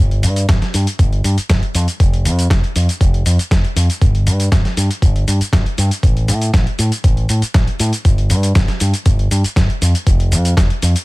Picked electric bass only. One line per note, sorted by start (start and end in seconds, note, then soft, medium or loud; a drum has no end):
0.00 0.25 G1 medium
0.23 0.45 G2 loud
0.49 0.60 G1 medium
0.74 0.85 G2 medium
0.99 1.21 G1 medium
1.24 1.35 G2 medium
1.38 muted picked electric bass stroke soft
1.50 1.61 G1 medium
1.75 1.86 F2 loud
2.00 2.27 F1 medium
2.25 2.47 F2 loud
2.50 2.62 F1 medium
2.76 2.87 F2 medium
3.01 3.22 F1 loud
3.26 3.37 F2 medium
3.39 muted picked electric bass stroke soft
3.51 3.62 F1 medium
3.76 3.87 F2 loud
4.01 4.28 G1 loud
4.27 4.48 G2 loud
4.52 4.63 G1 medium
4.77 4.88 G2 medium
5.02 5.24 G1 medium
5.28 5.39 G2 medium
5.41 muted picked electric bass stroke soft
5.53 5.64 G1 medium
5.78 5.89 G2 loud
6.03 6.30 A1 medium
6.28 6.50 A2 loud
6.54 6.65 A1 medium
6.79 6.90 A2 medium
7.04 7.26 A1 medium
7.29 7.41 A2 loud
7.42 muted picked electric bass stroke soft
7.54 7.66 A1 medium
7.80 7.91 A2 loud
8.05 8.32 G1 medium
8.30 8.52 G2 loud
8.55 8.67 G1 medium
8.81 8.92 G2 medium
9.06 9.27 G1 loud
9.31 9.42 G2 medium
9.44 muted picked electric bass stroke soft
9.56 9.67 G1 medium
9.82 9.93 F2 loud
10.07 10.33 F1 loud
10.32 10.53 F2 loud
10.57 10.68 F1 medium
10.82 10.94 F2 medium